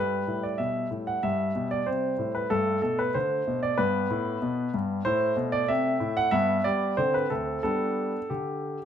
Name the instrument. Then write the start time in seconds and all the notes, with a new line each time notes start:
grand piano
Already playing: G2 G3 B4
0.27 A2
0.43 D5
0.58 B2 E5
0.91 A2
1.07 F#5
1.23 G2 G3 E5
1.55 B2
1.71 D5
1.86 C3 C5
2.19 A2
2.35 B4
2.50 G2 A3 A4
2.82 B2 A4
2.99 B4
3.14 D3 C5
3.48 B2
3.63 D5
3.78 G2 B3 B4
4.10 A2
4.42 B2
4.74 G2
5.05 A2 A3 C5
5.37 B2
5.52 D5
5.68 C3 E5
6.00 A2
6.17 F#5
6.31 G2 B3 E5
6.64 G3 D5
6.97 D3 C4 C5
7.14 B4
7.30 D2 A4
7.63 G3 B3 D4 A4
8.30 D3 G4